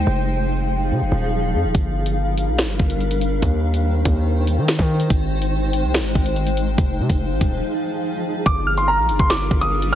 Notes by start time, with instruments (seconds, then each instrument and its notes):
0.07 808-style bass F1, ambient pad F3 D#4 G#4 F5
0.91 808-style bass C3
1.01 808-style bass F1
1.12 808-style bass D#1
1.54 808-style bass F2
1.64 808-style bass D#1
1.75 808-style bass G1, ambient pad G3 D4 A#4, kick, closed hi-hat
2.06 closed hi-hat
2.38 closed hi-hat
2.48 808-style bass A#1
2.58 finger snap, snare, closed hi-hat
2.64 808-style bass G1
2.80 808-style bass G1, kick
2.90 closed hi-hat
3.00 closed hi-hat
3.11 closed hi-hat
3.21 closed hi-hat
3.42 808-style bass D#2, ambient pad D#3 D#4 C5 G5, kick, closed hi-hat
3.74 closed hi-hat
4.05 808-style bass D#2, kick, closed hi-hat
4.47 closed hi-hat
4.58 808-style bass D#3
4.68 finger snap, snare
4.79 808-style bass D#3, kick, closed hi-hat
5.00 closed hi-hat
5.10 808-style bass G#1, ambient pad G#3, kick, closed hi-hat
5.42 closed hi-hat
5.73 closed hi-hat
5.84 808-style bass C2
5.94 finger snap, snare, closed hi-hat
6.00 808-style bass G#1
6.15 808-style bass G#1, kick
6.26 closed hi-hat
6.36 closed hi-hat
6.47 closed hi-hat
6.57 closed hi-hat
6.78 808-style bass F1, ambient pad F3 G#4 F5, kick, closed hi-hat
6.99 808-style bass C3
7.10 808-style bass F1, kick, closed hi-hat
7.31 808-style bass G#1
7.41 808-style bass D#1, kick, closed hi-hat
8.46 808-style bass G1, ambient pad G3 D4 F4 A#4, grand piano D6, kick, closed hi-hat
8.67 synth bell F6
8.77 grand piano C6, closed hi-hat
8.88 grand piano A#5
8.98 808-style bass A#1
9.09 808-style bass G1, closed hi-hat
9.19 808-style bass G1, grand piano C6, kick
9.30 grand piano D6, finger snap, snare, closed hi-hat
9.51 808-style bass G1, kick
9.61 grand piano D#6, closed hi-hat
9.82 closed hi-hat